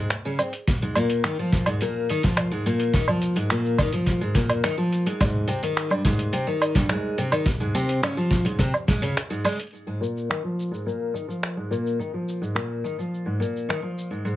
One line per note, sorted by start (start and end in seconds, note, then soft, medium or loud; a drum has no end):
0.10 finger snap loud
0.10 closed hi-hat medium
0.10 shaker soft
0.25 0.39 C#3 medium
0.39 0.52 C4 medium
0.39 closed hi-hat soft
0.39 low woodblock medium
0.39 shaker medium
0.53 closed hi-hat soft
0.53 shaker soft
0.67 kick loud
0.67 closed hi-hat medium
0.67 shaker soft
0.82 0.95 G#2 medium
0.95 1.23 A#2 loud
0.95 closed hi-hat soft
0.95 low woodblock medium
0.95 shaker medium
1.09 closed hi-hat soft
1.09 shaker soft
1.24 1.37 D#3 loud
1.24 finger snap medium
1.24 closed hi-hat medium
1.24 shaker soft
1.39 1.66 F3 medium
1.39 shaker soft
1.53 kick loud
1.53 closed hi-hat soft
1.53 shaker medium
1.66 1.80 G#2 medium
1.66 closed hi-hat soft
1.66 low woodblock medium
1.66 shaker soft
1.81 2.08 A#2 loud
1.81 closed hi-hat soft
1.81 shaker soft
2.09 2.22 D#3 medium
2.09 closed hi-hat soft
2.09 shaker medium
2.23 2.50 F3 medium
2.23 kick loud
2.23 closed hi-hat soft
2.23 shaker soft
2.26 shaker soft
2.28 shaker soft
2.31 shaker soft
2.33 shaker soft
2.35 finger snap medium
2.35 closed hi-hat soft
2.35 low woodblock medium
2.35 shaker soft
2.37 shaker soft
2.51 2.64 G#2 medium
2.66 2.93 A#2 loud
2.66 closed hi-hat soft
2.66 shaker medium
2.80 closed hi-hat soft
2.80 shaker soft
2.93 3.07 D#3 loud
2.93 kick loud
2.93 closed hi-hat medium
2.93 shaker soft
3.08 3.35 F3 medium
3.08 low woodblock medium
3.22 closed hi-hat soft
3.22 shaker medium
3.36 3.49 G#2 medium
3.36 closed hi-hat soft
3.36 shaker soft
3.50 3.78 A#2 loud
3.50 finger snap medium
3.50 closed hi-hat medium
3.50 shaker soft
3.65 shaker soft
3.78 3.92 D#3 medium
3.78 kick medium
3.78 closed hi-hat soft
3.78 low woodblock medium
3.78 shaker medium
3.92 4.20 F3 medium
3.92 closed hi-hat soft
3.92 shaker soft
4.06 kick medium
4.06 closed hi-hat medium
4.06 shaker soft
4.21 4.34 G#2 medium
4.21 shaker soft
4.35 4.62 A#2 medium
4.35 kick medium
4.35 closed hi-hat medium
4.35 shaker medium
4.49 closed hi-hat soft
4.49 low woodblock medium
4.49 shaker soft
4.64 4.76 D#3 medium
4.64 finger snap medium
4.64 closed hi-hat medium
4.64 shaker soft
4.78 5.05 F3 medium
4.93 closed hi-hat soft
4.93 shaker medium
5.06 5.19 G#2 medium
5.06 closed hi-hat soft
5.06 shaker soft
5.20 5.47 G#2 loud
5.20 kick loud
5.20 closed hi-hat medium
5.20 low woodblock medium
5.20 shaker soft
5.48 5.61 C3 loud
5.48 closed hi-hat soft
5.48 shaker medium
5.63 5.90 D#3 medium
5.63 closed hi-hat soft
5.63 shaker soft
5.77 finger snap loud
5.77 closed hi-hat medium
5.77 shaker soft
5.90 6.03 G2 medium
5.90 low woodblock medium
5.90 shaker soft
6.05 6.32 G#2 loud
6.05 kick loud
6.05 closed hi-hat soft
6.05 shaker medium
6.19 closed hi-hat soft
6.19 shaker soft
6.33 6.46 C3 loud
6.33 closed hi-hat medium
6.33 shaker soft
6.47 6.74 D#3 medium
6.62 closed hi-hat medium
6.62 low woodblock medium
6.62 shaker medium
6.75 6.88 G2 medium
6.75 kick medium
6.75 closed hi-hat soft
6.75 shaker soft
6.89 7.17 G#2 loud
6.89 finger snap loud
6.89 shaker soft
7.18 7.31 C3 loud
7.18 closed hi-hat soft
7.18 shaker medium
7.32 7.46 D#3 medium
7.32 closed hi-hat soft
7.32 low woodblock medium
7.32 shaker soft
7.46 kick loud
7.46 closed hi-hat medium
7.46 shaker soft
7.60 7.73 G#2 medium
7.60 shaker soft
7.75 8.02 C3 loud
7.75 closed hi-hat soft
7.75 shaker medium
7.89 closed hi-hat soft
7.89 shaker soft
8.03 finger snap loud
8.03 closed hi-hat medium
8.03 low woodblock medium
8.03 shaker soft
8.17 8.44 F3 medium
8.17 shaker soft
8.31 kick loud
8.31 closed hi-hat soft
8.31 shaker medium
8.45 8.58 G#2 medium
8.45 closed hi-hat soft
8.45 shaker soft
8.59 8.72 C3 loud
8.59 kick medium
8.59 closed hi-hat medium
8.59 shaker soft
8.74 low woodblock medium
8.74 shaker soft
8.88 9.01 G#3 medium
8.88 kick loud
8.88 closed hi-hat medium
8.88 shaker medium
9.02 9.15 C#3 loud
9.02 closed hi-hat soft
9.02 shaker soft
9.17 finger snap loud
9.17 closed hi-hat medium
9.17 shaker soft
9.30 9.43 G#2 medium
9.30 shaker soft
9.45 9.57 G#3 loud
9.45 closed hi-hat soft
9.45 low woodblock medium
9.45 shaker medium
9.49 closed hi-hat soft
9.52 closed hi-hat soft
9.56 closed hi-hat soft
9.59 closed hi-hat soft
9.59 shaker soft
9.63 closed hi-hat soft
9.67 closed hi-hat soft
9.74 shaker soft
9.87 10.00 G#2 medium
10.01 10.28 A#2 medium
10.01 shaker medium
10.17 shaker soft
10.30 10.42 D#3 medium
10.30 finger snap medium
10.30 shaker soft
10.44 10.71 F3 medium
10.59 shaker medium
10.71 10.84 G#2 medium
10.71 shaker soft
10.86 11.13 A#2 medium
10.86 shaker soft
11.14 11.27 D#3 medium
11.14 shaker medium
11.28 11.55 F3 medium
11.28 shaker soft
11.43 finger snap medium
11.43 shaker soft
11.57 11.70 G#2 medium
11.71 11.98 A#2 medium
11.71 shaker medium
11.86 shaker soft
11.99 12.12 D#3 medium
11.99 shaker soft
12.14 12.41 F3 medium
12.28 shaker medium
12.42 12.54 G#2 medium
12.42 shaker soft
12.55 12.82 A#2 medium
12.55 finger snap medium
12.55 shaker soft
12.84 12.97 D#3 medium
12.84 shaker medium
12.99 13.25 F3 medium
12.99 shaker soft
13.14 shaker soft
13.26 13.39 G#2 medium
13.40 13.67 A#2 medium
13.40 shaker medium
13.56 shaker soft
13.69 13.82 D#3 medium
13.69 finger snap medium
13.69 shaker soft
13.82 14.10 F3 medium
13.98 shaker medium
14.11 14.24 G#2 medium
14.11 shaker soft
14.25 14.36 G#2 medium
14.25 shaker soft